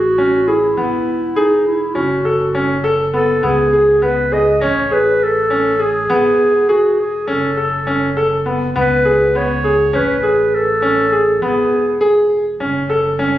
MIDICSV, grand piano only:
0, 0, Header, 1, 2, 480
1, 0, Start_track
1, 0, Tempo, 591716
1, 627, Time_signature, 9, 3, 24, 8
1, 10855, End_track
2, 0, Start_track
2, 0, Title_t, "Grand piano"
2, 0, Program_c, 0, 0
2, 148, Note_on_c, 0, 61, 58
2, 315, Note_off_c, 0, 61, 0
2, 387, Note_on_c, 0, 68, 55
2, 555, Note_off_c, 0, 68, 0
2, 627, Note_on_c, 0, 59, 66
2, 963, Note_off_c, 0, 59, 0
2, 1106, Note_on_c, 0, 68, 69
2, 1442, Note_off_c, 0, 68, 0
2, 1582, Note_on_c, 0, 61, 60
2, 1752, Note_off_c, 0, 61, 0
2, 1825, Note_on_c, 0, 69, 56
2, 1994, Note_off_c, 0, 69, 0
2, 2066, Note_on_c, 0, 61, 62
2, 2234, Note_off_c, 0, 61, 0
2, 2303, Note_on_c, 0, 69, 64
2, 2472, Note_off_c, 0, 69, 0
2, 2543, Note_on_c, 0, 59, 57
2, 2712, Note_off_c, 0, 59, 0
2, 2782, Note_on_c, 0, 59, 69
2, 2952, Note_off_c, 0, 59, 0
2, 3025, Note_on_c, 0, 68, 60
2, 3194, Note_off_c, 0, 68, 0
2, 3261, Note_on_c, 0, 59, 68
2, 3431, Note_off_c, 0, 59, 0
2, 3502, Note_on_c, 0, 68, 60
2, 3671, Note_off_c, 0, 68, 0
2, 3743, Note_on_c, 0, 61, 68
2, 3912, Note_off_c, 0, 61, 0
2, 3983, Note_on_c, 0, 68, 54
2, 4320, Note_off_c, 0, 68, 0
2, 4464, Note_on_c, 0, 61, 62
2, 4633, Note_off_c, 0, 61, 0
2, 4699, Note_on_c, 0, 68, 58
2, 4870, Note_off_c, 0, 68, 0
2, 4945, Note_on_c, 0, 59, 75
2, 5281, Note_off_c, 0, 59, 0
2, 5426, Note_on_c, 0, 68, 69
2, 5762, Note_off_c, 0, 68, 0
2, 5902, Note_on_c, 0, 61, 68
2, 6071, Note_off_c, 0, 61, 0
2, 6144, Note_on_c, 0, 69, 55
2, 6312, Note_off_c, 0, 69, 0
2, 6382, Note_on_c, 0, 61, 62
2, 6551, Note_off_c, 0, 61, 0
2, 6626, Note_on_c, 0, 69, 61
2, 6793, Note_off_c, 0, 69, 0
2, 6861, Note_on_c, 0, 59, 54
2, 7030, Note_off_c, 0, 59, 0
2, 7103, Note_on_c, 0, 59, 73
2, 7271, Note_off_c, 0, 59, 0
2, 7342, Note_on_c, 0, 68, 57
2, 7511, Note_off_c, 0, 68, 0
2, 7585, Note_on_c, 0, 59, 66
2, 7753, Note_off_c, 0, 59, 0
2, 7821, Note_on_c, 0, 68, 58
2, 7990, Note_off_c, 0, 68, 0
2, 8057, Note_on_c, 0, 61, 65
2, 8228, Note_off_c, 0, 61, 0
2, 8298, Note_on_c, 0, 68, 57
2, 8635, Note_off_c, 0, 68, 0
2, 8779, Note_on_c, 0, 61, 59
2, 8949, Note_off_c, 0, 61, 0
2, 9021, Note_on_c, 0, 68, 57
2, 9190, Note_off_c, 0, 68, 0
2, 9264, Note_on_c, 0, 59, 68
2, 9600, Note_off_c, 0, 59, 0
2, 9741, Note_on_c, 0, 68, 72
2, 10077, Note_off_c, 0, 68, 0
2, 10223, Note_on_c, 0, 61, 67
2, 10391, Note_off_c, 0, 61, 0
2, 10461, Note_on_c, 0, 69, 61
2, 10630, Note_off_c, 0, 69, 0
2, 10700, Note_on_c, 0, 61, 66
2, 10855, Note_off_c, 0, 61, 0
2, 10855, End_track
0, 0, End_of_file